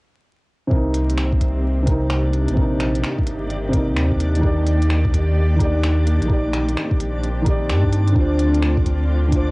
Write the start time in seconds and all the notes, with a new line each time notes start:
0.67 C3 C4 D5, kick
0.71 C2 D#3 A#3 C4 D4 D#4 G4 A#4
0.94 closed hi-hat
1.10 closed hi-hat
1.18 finger snap
1.32 kick
1.41 kick, closed hi-hat
1.83 C3 C4
1.87 D#4 A#4, kick, closed hi-hat
2.10 finger snap
2.34 closed hi-hat
2.48 A#1, closed hi-hat
2.54 C3 C4, kick
2.59 D#4 A#4
2.80 finger snap, closed hi-hat
2.95 closed hi-hat
3.04 finger snap
3.19 kick
3.27 G1, closed hi-hat
3.50 closed hi-hat
3.69 C3 C4
3.73 G1 D#4 A#4, kick, closed hi-hat
3.89 D#2
3.97 finger snap
4.12 kick
4.20 closed hi-hat
4.35 D#3, closed hi-hat
4.42 D#2 D#4 G4 D5, kick
4.47 D5
4.67 closed hi-hat
4.82 closed hi-hat
4.90 finger snap
5.05 kick
5.13 kick, closed hi-hat
5.56 D#3 D#4, kick
5.60 G4 D5, closed hi-hat
5.84 finger snap
6.07 closed hi-hat
6.22 A#1 D#3, closed hi-hat
6.28 C4 D#4 G4, kick
6.33 D5
6.53 finger snap, closed hi-hat
6.69 closed hi-hat
6.77 finger snap
6.91 kick
6.99 A#1, closed hi-hat
7.23 closed hi-hat
7.42 D#3 D#4
7.46 G4 D5, kick, closed hi-hat
7.69 G2, finger snap
7.84 kick
7.93 closed hi-hat
8.08 closed hi-hat
8.12 D3 D4, kick
8.16 D2 D3 A3 F4 C5
8.39 closed hi-hat
8.54 closed hi-hat
8.62 finger snap
8.77 kick
8.86 kick, closed hi-hat
9.28 D3 D4, kick
9.32 F4 C5, closed hi-hat